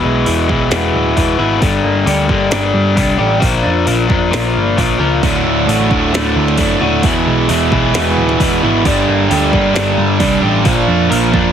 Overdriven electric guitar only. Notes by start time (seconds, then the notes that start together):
Already playing: E2 B2 E3
0.27 E2 B2 E3
0.49 E2 B2 E3
0.70 E2 B2 E3
1.16 E2 B2 E3
1.38 E2 B2 E3
1.61 G2 D3 G3
2.05 G2 D3 G3
2.28 G2 D3 G3
2.52 G2 D3 G3
2.96 G2 D3 G3
3.17 G2 D3 G3
3.40 A#2 F3 A#3
3.87 A#2 F3 A#3
4.08 A#2 F3 A#3
4.31 A#2 F3 A#3
4.77 A#2 F3 A#3
4.99 A#2 F3 A#3
5.23 D2 A2 D3
5.69 D2 A2 D3
5.90 D2 A2 D3
6.13 D2 A2 D3
6.57 D2 A2 D3
6.80 D2 A2 D3
7.03 E2 B2 E3
7.48 E2 B2 E3
7.71 E2 B2 E3
7.94 E2 B2 E3
8.39 E2 B2 E3
8.62 E2 B2 E3
8.85 G2 D3 G3
9.30 G2 D3 G3
9.52 G2 D3 G3
9.74 G2 D3 G3
10.19 G2 D3 G3
10.41 G2 D3 G3
10.64 A#2 F3 A#3
11.09 A#2 F3 A#3
11.33 A#2 F3 A#3